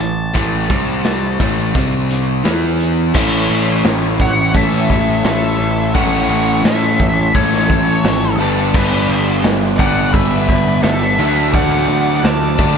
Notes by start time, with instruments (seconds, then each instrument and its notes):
0.00 picked electric bass A1, overdriven electric guitar A2 E3, lead electric guitar A5, closed hi-hat
0.34 picked electric bass A1, overdriven electric guitar A2 E3 A3, kick, closed hi-hat
0.70 picked electric bass C2, overdriven electric guitar C3 G3 C4, kick, closed hi-hat
1.04 snare, closed hi-hat
1.40 picked electric bass A1, overdriven electric guitar A2 E3 A3, kick, closed hi-hat
1.74 picked electric bass C2, overdriven electric guitar C3 G3 C4, kick, closed hi-hat
2.09 closed hi-hat
2.44 picked electric bass E2, overdriven electric guitar E3 B3 E4, snare, closed hi-hat
2.79 closed hi-hat
3.14 picked electric bass A1, overdriven electric guitar A2 E3 A3 C#4 E4 A4, tonewheel organ A3 C#4 E4 C#5, kick, crash
3.50 picked electric bass A1
3.84 picked electric bass A1, snare, open hi-hat
4.20 picked electric bass A1, lead electric guitar C#5 F#5, kick
4.54 picked electric bass A1, overdriven electric guitar A2 E3 A3 C#4 E4, lead electric guitar A4 E5, kick, open hi-hat
4.90 picked electric bass A1, kick
5.24 picked electric bass A1, lead electric guitar A4 E5, snare, open hi-hat
5.59 picked electric bass A1
5.94 picked electric bass A1, overdriven electric guitar A2 E3 A3 C#4 E4 A4, tonewheel organ A3 C#4 E4, lead electric guitar C#5 F#5, kick, open hi-hat
6.29 picked electric bass A1
6.64 picked electric bass A1, lead electric guitar A4 E5, snare, open hi-hat
7.00 picked electric bass A1, kick
7.34 picked electric bass A1, overdriven electric guitar A2 E3 A3 C#4 E4, lead electric guitar A4 C#5, kick, open hi-hat
7.53 snare
7.70 picked electric bass A1, kick
8.04 picked electric bass G#1, snare, open hi-hat
8.39 picked electric bass G1, overdriven electric guitar G2 D3 G3 B3 D4 B4, tonewheel organ B3 D4 G4 D5, lead electric guitar A4
8.74 picked electric bass G1, lead electric guitar B4, kick, crash
9.09 picked electric bass G1
9.43 picked electric bass G1, snare, open hi-hat
9.77 picked electric bass G1, overdriven electric guitar D3 G3 B3 D4, lead electric guitar D5 F#5, kick
9.81 overdriven electric guitar G2
10.12 picked electric bass G1, lead electric guitar B4 E5, kick, open hi-hat
10.49 picked electric bass G1, kick
10.82 picked electric bass G1, lead electric guitar A4 E5, snare, open hi-hat
11.18 picked electric bass D2, overdriven electric guitar D3 F#3 A3 D4 F#4 A4, tonewheel organ A3 D4 F#4 D5
11.53 picked electric bass D2, lead electric guitar D5 F#5, kick, open hi-hat
11.88 picked electric bass D2
12.16 lead electric guitar D5 F#5
12.23 picked electric bass D2, lead electric guitar D5 A5, snare, open hi-hat
12.58 picked electric bass D2, overdriven electric guitar D3 F#3 A3 D4, kick